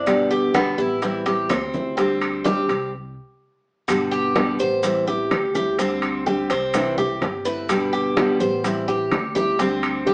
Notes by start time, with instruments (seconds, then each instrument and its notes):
Already playing: upright bass G1, cuban tres D4
0.06 nylon-string guitar B2 D3 G3 B3 G4, high bongo, high conga, high timbale, claves, maracas
0.31 cuban tres G4, high bongo, high conga, maracas
0.54 nylon-string guitar B2 D3 G3 B3 G4, cuban tres B3, high bongo, high conga, high timbale, low timbale, claves, maracas
0.78 upright bass A1, nylon-string guitar G3 B3 G4, cuban tres E4, maracas
1.02 nylon-string guitar E3 G3 C4 E4, high bongo, high conga, high timbale, maracas
1.26 nylon-string guitar G3 C4 E4, cuban tres G4, high bongo, high conga, high timbale, maracas
1.49 upright bass D2, cuban tres C4, muted nylon-string guitar stroke, high bongo, low bongo, high conga, high timbale, low timbale, claves, maracas
1.74 nylon-string guitar G3 C4 E4, high conga, maracas
1.97 nylon-string guitar D3 G3 C4 G4, cuban tres C4, high bongo, high conga, high timbale, maracas
2.21 high bongo, high conga, high timbale, claves, maracas
2.44 nylon-string guitar D3 G3 C4 G4, cuban tres G4, high bongo, high conga, low timbale, maracas
2.68 upright bass C2, nylon-string guitar G3 C4 G4, high bongo, high conga, high timbale, maracas
3.88 upright bass G1, nylon-string guitar B2 D3 G3 B3 G4, high bongo, high conga, high timbale, claves, maracas
4.11 cuban tres G4, high bongo, high conga, maracas
4.35 nylon-string guitar B2 D3 G3 B3 G4, high bongo, high conga, high timbale, claves, maracas
4.59 upright bass A1, nylon-string guitar G3 B3 G4, cuban tres C5, high bongo, high conga, maracas
4.83 nylon-string guitar E3 G3 C4 E4, high bongo, high conga, high timbale, maracas
5.07 nylon-string guitar G3 C4 E4, cuban tres G4, high conga, maracas
5.31 upright bass D2, muted nylon-string guitar stroke, high bongo, low bongo, high conga, high timbale, claves, maracas
5.55 nylon-string guitar G3 C4 E4, cuban tres G4, high bongo, high conga, maracas
5.79 nylon-string guitar D3 G3 C4 G4, cuban tres C4, high bongo, high conga, high timbale, maracas
6.02 high bongo, high conga, high timbale, claves, maracas
6.26 nylon-string guitar D3 G3 C4 G4, cuban tres G4, high bongo, high conga, maracas
6.50 upright bass C2, nylon-string guitar G3 C4 G4, cuban tres C4, high bongo, high timbale, maracas
6.74 nylon-string guitar C3 E3 A3 C4 E4, high bongo, high conga, low conga, high timbale, claves, maracas
6.97 nylon-string guitar A3 C4 E4, cuban tres G4, high conga, low conga, maracas
7.21 upright bass G1, muted nylon-string guitar stroke, high bongo, low bongo, high conga, high timbale, maracas
7.45 nylon-string guitar A3 C4 E4, cuban tres B4, high bongo, maracas
7.69 nylon-string guitar B2 D3 G3 B3 G4, high bongo, high conga, high timbale, claves, maracas
7.93 cuban tres G4, high bongo, high conga, maracas
8.17 nylon-string guitar B2 D3 G3 B3 G4, high bongo, high conga, high timbale, claves, maracas
8.40 upright bass A1, nylon-string guitar G3 B3 G4, cuban tres C5, high bongo, high conga, maracas
8.64 nylon-string guitar E3 G3 C4 E4, high bongo, high conga, high timbale, maracas
8.88 nylon-string guitar G3 C4 E4, cuban tres G4, high conga, maracas
9.11 upright bass D2, muted nylon-string guitar stroke, high bongo, low bongo, high conga, high timbale, low timbale, claves, maracas
9.35 nylon-string guitar G3 C4 E4, cuban tres G4, high bongo, high conga, maracas
9.59 nylon-string guitar D3 G3 C4 G4, cuban tres C4, high bongo, high conga, high timbale, maracas
9.83 high bongo, high conga, high timbale, claves, maracas
10.06 nylon-string guitar D3 G3 C4 G4, cuban tres G4, high bongo, high conga, maracas